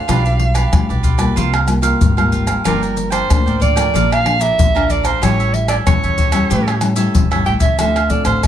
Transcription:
Already playing: soprano saxophone F5
0.08 upright bass B1, nylon-string guitar B2 G3 D4 F4, cavaquinho F4 G4 B4 D5, pandeiro, tamborim, maracas, surdo
0.25 cavaquinho G4 B4 D5, pandeiro, maracas
0.39 muted cavaquinho stroke, pandeiro
0.54 cavaquinho G4 B4 D5, pandeiro, tamborim, maracas
0.72 upright bass D2, nylon-string guitar B2 G3 D4 F4, pandeiro, tamborim, maracas, surdo
0.89 upright bass B1, cavaquinho G4 B4 D5, pandeiro, maracas
1.03 cavaquinho F4 G4 B4 D5, pandeiro, maracas, surdo
1.18 nylon-string guitar G3 A#3 F4, cavaquinho G4 B4 D5, pandeiro, tamborim, maracas
1.36 upright bass C2, nylon-string guitar C3, cavaquinho F4 A#4 C5 F5, pandeiro, maracas, surdo
1.54 cavaquinho A#4 C5 F5, pandeiro, tamborim, maracas
1.67 nylon-string guitar G3 A#3 F4, muted cavaquinho stroke, pandeiro, tamborim, maracas
1.81 nylon-string guitar G3 A#3 F4, cavaquinho A#4 C5 F5, pandeiro, maracas
2.01 upright bass G#1, nylon-string guitar G2, pandeiro, maracas, surdo
2.17 nylon-string guitar G3 A#3 F4, cavaquinho A#4 C5 F5, pandeiro, tamborim, maracas
2.32 cavaquinho F4 A#4 C5 F5, pandeiro, maracas
2.46 cavaquinho A#4 C5 F5, pandeiro, tamborim, maracas
2.64 upright bass G1, nylon-string guitar G2 F3 A#3 D4, cavaquinho F4 A#4 D5 G5, soprano saxophone A#4, pandeiro, tamborim, maracas, surdo
2.81 cavaquinho A#4 D5 G5, pandeiro, maracas
2.96 muted cavaquinho stroke, pandeiro, maracas
3.10 cavaquinho A#4 D5 G5, soprano saxophone C5, pandeiro, tamborim, maracas
3.30 upright bass D2, nylon-string guitar D3 F3 A#3 D4, pandeiro, tamborim, maracas, surdo
3.46 upright bass A1, cavaquinho A#4 D5 G5, pandeiro, maracas
3.60 cavaquinho F4 A#4 D5 G5, soprano saxophone D5, pandeiro, maracas, surdo
3.76 nylon-string guitar F3 A3 D4, cavaquinho A#4 D5 G5, pandeiro, tamborim, maracas
3.93 upright bass A#1, nylon-string guitar A#2, cavaquinho A4 D5 F5 A#5, pandeiro, maracas, surdo
4.11 cavaquinho D5 F5 A#5, soprano saxophone F5, pandeiro, tamborim, maracas
4.24 nylon-string guitar F3 A3 D4, muted cavaquinho stroke, pandeiro, tamborim
4.39 nylon-string guitar F3 A3 D4, cavaquinho D5 A#5, soprano saxophone E5, pandeiro, maracas
4.58 upright bass A#1, nylon-string guitar F2, pandeiro, maracas, surdo
4.75 nylon-string guitar F3 A3 D4, cavaquinho D5 F5 A#5, pandeiro, tamborim, maracas
4.89 cavaquinho A4 D5 F5 A#5, soprano saxophone D5, pandeiro, maracas
5.03 soprano saxophone C5, cavaquinho D5 F5 A#5, pandeiro, tamborim, maracas
5.22 upright bass A1, nylon-string guitar A2 G3 C#4 E4, cavaquinho G4 A4 C#5 E5, soprano saxophone C#5, pandeiro, tamborim, maracas, surdo
5.39 cavaquinho A4 C#5 E5, pandeiro, maracas
5.54 soprano saxophone E5, muted cavaquinho stroke, pandeiro
5.68 cavaquinho A4 C#5 E5, soprano saxophone D5, pandeiro, tamborim, maracas
5.86 upright bass E2, nylon-string guitar E3 G3 C#4 E4, soprano saxophone C#5, pandeiro, tamborim, maracas, surdo
6.03 upright bass E2, cavaquinho A4 C#5 E5, pandeiro, maracas
6.18 cavaquinho G4 A4 C#5 E5, pandeiro, maracas, surdo
6.32 nylon-string guitar G3 C#4 E4, cavaquinho A4 C#5 E5, pandeiro, tamborim, maracas
6.50 nylon-string guitar A2, upright bass A2, cavaquinho G4 A4 C#5 E5, pandeiro, maracas, surdo
6.67 cavaquinho A4 C#5 E5, pandeiro, tamborim, maracas
6.81 nylon-string guitar G3 C#4 E4, muted cavaquinho stroke, pandeiro, tamborim, maracas
6.95 nylon-string guitar G3 C#4 E4, cavaquinho A4 C#5 E5, pandeiro, maracas
7.15 upright bass E1, nylon-string guitar E3, pandeiro, maracas, surdo
7.31 upright bass G1, nylon-string guitar G3 C#4 E4, cavaquinho A4 C#5 E5, pandeiro, tamborim, maracas
7.45 upright bass A1, nylon-string guitar G3 C#4 E4, cavaquinho G4 A4 C#5 E5, soprano saxophone G5, pandeiro
7.59 upright bass C#2, cavaquinho A4 C#5 E5, soprano saxophone E5, pandeiro, maracas, surdo
7.79 upright bass D2, nylon-string guitar D3 C4 F4 A4, cavaquinho D4 A4 C5 F5, soprano saxophone E5, pandeiro, tamborim, maracas, surdo
7.96 cavaquinho A4 C5 F5, pandeiro, tamborim, maracas
8.09 nylon-string guitar C4 F4 A4, soprano saxophone D5, pandeiro, maracas, surdo
8.24 upright bass A1, cavaquinho A4 C5 F5, soprano saxophone C5, pandeiro, tamborim, maracas
8.43 upright bass A1, nylon-string guitar A2, cavaquinho D4 A4 C5, pandeiro, tamborim, maracas, surdo

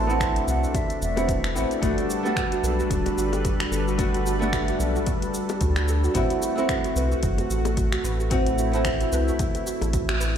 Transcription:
Already playing: analog synth bass A1, analog synth pad A3 D4, flute A5
0.07 nylon-string guitar B3 C4 E4 F#4, cabasa
0.20 finger snap, kick, closed hi-hat, cabasa
0.36 closed hi-hat, cabasa
0.47 analog synth bass C2, flute F#5, cabasa
0.64 cabasa
0.74 flute E5, kick, closed hi-hat, high bongo, cabasa
0.90 closed hi-hat, cabasa
1.01 analog synth bass E1, flute E5, cabasa
1.16 nylon-string guitar B3 C4 E4 F#4, closed hi-hat, high bongo, cabasa
1.28 kick, closed hi-hat, cabasa
1.44 finger snap, closed hi-hat, cabasa
1.54 analog synth bass A1, nylon-string guitar B3 C4 E4 F#4, cabasa
1.71 closed hi-hat, cabasa
1.81 analog synth bass G1, analog synth pad G3 A4 B4, nylon-string guitar A3 B3 D4 F#4, synth arpeggio sound F#4, kick, closed hi-hat, cabasa
1.98 synth arpeggio sound F#4, closed hi-hat, cabasa
2.10 synth arpeggio sound F#4, cabasa
2.23 nylon-string guitar A3 B3 D4 F#4, synth arpeggio sound G4, cabasa
2.36 synth arpeggio sound F#4, finger snap, kick, closed hi-hat, cabasa
2.52 synth arpeggio sound F#4, closed hi-hat, cabasa
2.63 analog synth bass B1, synth arpeggio sound A4, cabasa
2.79 synth arpeggio sound F#4, cabasa
2.90 analog synth bass D1, synth arpeggio sound F#4, kick, closed hi-hat, cabasa
3.06 synth arpeggio sound F#4, closed hi-hat, high bongo, cabasa
3.17 analog synth bass G1, synth arpeggio sound F#4, cabasa
3.33 synth arpeggio sound G4, closed hi-hat, high bongo, cabasa
3.45 synth arpeggio sound F#4, kick, closed hi-hat, cabasa
3.60 synth arpeggio sound F#4, finger snap, closed hi-hat, cabasa
3.71 analog synth bass G1, synth arpeggio sound A4, cabasa
3.88 synth arpeggio sound F#4, cabasa
3.98 nylon-string guitar A3 B3 D4 F#4, synth arpeggio sound F#4, kick, closed hi-hat, cabasa
4.14 synth arpeggio sound F#4, closed hi-hat, cabasa
4.26 synth arpeggio sound F#4, cabasa
4.39 nylon-string guitar A3 B3 D4 F#4, synth arpeggio sound G4, cabasa
4.53 synth arpeggio sound F#4, finger snap, kick, closed hi-hat, cabasa
4.68 synth arpeggio sound F#4, closed hi-hat, cabasa
4.79 analog synth bass B1, synth arpeggio sound A4, cabasa
4.96 synth arpeggio sound F#4, cabasa
5.06 synth arpeggio sound F#4, kick, closed hi-hat, high bongo, cabasa
5.22 synth arpeggio sound F#4, closed hi-hat, cabasa
5.34 synth arpeggio sound F#4, cabasa
5.49 synth arpeggio sound G4, closed hi-hat, high bongo, cabasa
5.61 analog synth bass D2, synth arpeggio sound F#4, kick, closed hi-hat, cabasa
5.76 synth arpeggio sound F#4, finger snap, closed hi-hat, cabasa
5.88 synth arpeggio sound A4, cabasa
6.04 synth arpeggio sound F#4, cabasa
6.14 analog synth bass A1, analog synth pad A3 F#4, nylon-string guitar B3 C4 E4 F#4, synth arpeggio sound F#4, kick, closed hi-hat, cabasa
6.30 synth arpeggio sound F#4, closed hi-hat, cabasa
6.42 synth arpeggio sound F#4, cabasa
6.56 nylon-string guitar B3 C4 E4 F#4, synth arpeggio sound A4, cabasa
6.69 synth arpeggio sound F#4, finger snap, kick, closed hi-hat, cabasa
6.84 synth arpeggio sound F#4, closed hi-hat, cabasa
6.96 analog synth bass C2, synth arpeggio sound B4, cabasa
7.12 synth arpeggio sound F#4, cabasa
7.23 analog synth bass F#1, synth arpeggio sound F#4, kick, closed hi-hat, cabasa
7.38 synth arpeggio sound F#4, closed hi-hat, high bongo, cabasa
7.50 analog synth bass A1, synth arpeggio sound F#4, cabasa
7.65 synth arpeggio sound A4, closed hi-hat, high bongo, cabasa
7.77 synth arpeggio sound F#4, kick, closed hi-hat, cabasa
7.92 synth arpeggio sound F#4, finger snap, closed hi-hat, cabasa
8.04 analog synth bass A1, synth arpeggio sound B4, cabasa
8.20 synth arpeggio sound F#4, cabasa
8.30 nylon-string guitar B3 C4 E4 F#4, analog synth pad E4, synth arpeggio sound F#4, kick, closed hi-hat, cabasa
8.47 synth arpeggio sound F#4, closed hi-hat, cabasa
8.58 synth arpeggio sound F#4, cabasa
8.72 nylon-string guitar B3 C4 E4 F#4, synth arpeggio sound A4, closed hi-hat, cabasa
8.85 synth arpeggio sound F#4, finger snap, kick, closed hi-hat, cabasa
9.01 synth arpeggio sound F#4, closed hi-hat, cabasa
9.12 analog synth bass C2, synth arpeggio sound B4, cabasa
9.28 synth arpeggio sound F#4, cabasa
9.39 synth arpeggio sound F#4, kick, closed hi-hat, high bongo, cabasa
9.55 synth arpeggio sound F#4, closed hi-hat, cabasa
9.66 synth arpeggio sound F#4, cabasa
9.81 analog synth bass A1, synth arpeggio sound A4, closed hi-hat, high bongo, cabasa
9.93 synth arpeggio sound F#4, kick, closed hi-hat, cabasa
10.09 synth arpeggio sound F#4, finger snap, closed hi-hat, cabasa
10.20 synth arpeggio sound B4, cabasa

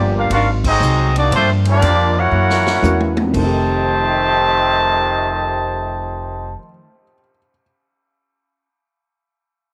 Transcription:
Already playing: upright bass G1, hollow-body jazz guitar G2 F3 A#3 D4, trombone section F3 A#3, upright piano F3 G3 A#3 D4 G4, trumpet section A#3 F4 G4 D5
0.15 trombone section A#3 D4 F4, trumpet section D4 G4 A#4 F5
0.30 upright bass G#1, hollow-body jazz guitar G#2 F#3 C4 D#4, trumpet section D4 F#4 A#4 F5, trombone section F4, kick, ride
0.64 trombone section F#3 C4 D#4, trumpet section C4 G#4 D#5, kick, crash
0.68 trumpet section F#4
0.80 upright bass C2, hollow-body jazz guitar G#2 F#3 C4 D#4, hi-hat pedal
1.15 trumpet section A#3 D#4 F#4 D5, trombone section D4, ride
1.31 upright bass G2, hollow-body jazz guitar G2 F3 A#3 D4, trumpet section A3 D4 F4 C5, trombone section C4, kick, ride
1.65 trombone section F3 A#3 D4, trumpet section F4 D5, ride
1.69 trumpet section A#3 G4
1.82 upright bass F2, hollow-body jazz guitar G2 F3 A#3 D4, kick, hi-hat pedal, ride
2.17 trombone section A#3 C#4 F#4, trumpet section E4 A#4 C#5 F#5
2.31 upright bass F#2, hollow-body jazz guitar F#2 E3 A#3 C#4
2.50 snare
2.67 snare
2.82 upright bass E2, hollow-body jazz guitar F#2 E3 A#3 C#4, upright piano E3 F#3 A#3 C#4 F#4, hi-hat pedal, high tom
3.00 high tom
3.17 high tom
3.22 upright piano F2
3.26 hollow-body jazz guitar F2, upright piano C3
3.31 upright bass F1, trombone section F2 C3 D#3, upright piano D#3, kick, crash
3.35 hollow-body jazz guitar D#3, trombone section A3, upright piano A3, trumpet section G4 C5 D#5 A5
3.42 hollow-body jazz guitar A3, upright piano D#4
3.46 upright piano G4
3.84 upright piano C5
4.00 upright piano G5
4.09 upright piano C6
4.18 upright piano D#6
4.29 upright piano G6
4.41 upright piano C7

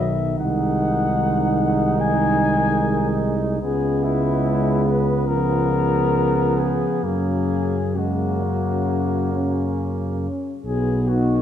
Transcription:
Already playing: tuba B1, euphonium D#3, trombone section F#3, flugelhorn B3
0.00 cornet E5
0.38 tuba C2, trombone section G#3, flugelhorn D#4, cornet F#5
2.00 cornet G#5
3.61 tuba C#2, euphonium C#3, trombone section G#3, flugelhorn B3, cornet G#4
4.04 cornet E4
4.86 cornet B4
5.27 euphonium C#3, trombone section F3, flugelhorn B3, cornet A#4
6.58 cornet G#4
7.04 tuba F#2, euphonium C#3, trombone section F#3, flugelhorn A#3, cornet G#4
7.96 euphonium C#3, trombone section G#3, flugelhorn A#3, cornet F#4
8.41 trombone section F#3
9.31 trombone section C#4
10.65 tuba B1, euphonium B3, cornet G#4
11.08 trombone section D#4, cornet F#4, flugelhorn F#4

